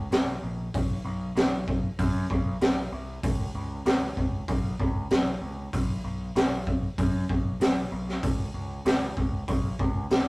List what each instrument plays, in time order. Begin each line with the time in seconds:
0.11 picked electric bass B1, snare, open hi-hat
0.42 picked electric bass A#1
0.74 picked electric bass B1, kick, open hi-hat
1.05 picked electric bass B1
1.36 picked electric bass B1, snare, open hi-hat
1.68 kick
1.99 picked electric bass F#2, kick, open hi-hat
2.30 picked electric bass B1, kick
2.61 picked electric bass B1, snare, open hi-hat
2.92 picked electric bass C2
3.23 picked electric bass C#2, kick, open hi-hat
3.55 picked electric bass C#2
3.86 picked electric bass C#2, snare, open hi-hat
4.17 picked electric bass C#2, kick
4.48 picked electric bass B1, kick, open hi-hat
4.80 picked electric bass C#2, kick
5.10 picked electric bass B1, snare, open hi-hat
5.42 picked electric bass C#2
5.73 picked electric bass B1, kick, open hi-hat
6.04 picked electric bass B1
6.36 picked electric bass B1, snare, open hi-hat
6.67 kick
6.98 picked electric bass F#2, kick, open hi-hat
7.29 picked electric bass B1, kick
7.60 picked electric bass B1, snare, open hi-hat
7.92 picked electric bass B1
8.09 snare
8.23 picked electric bass C#2, kick, open hi-hat
8.54 picked electric bass C#2
8.86 picked electric bass C#2, snare, open hi-hat
9.17 picked electric bass C#2, kick
9.48 picked electric bass B1, kick, open hi-hat
9.79 picked electric bass C#2, kick
10.10 picked electric bass B1, snare, open hi-hat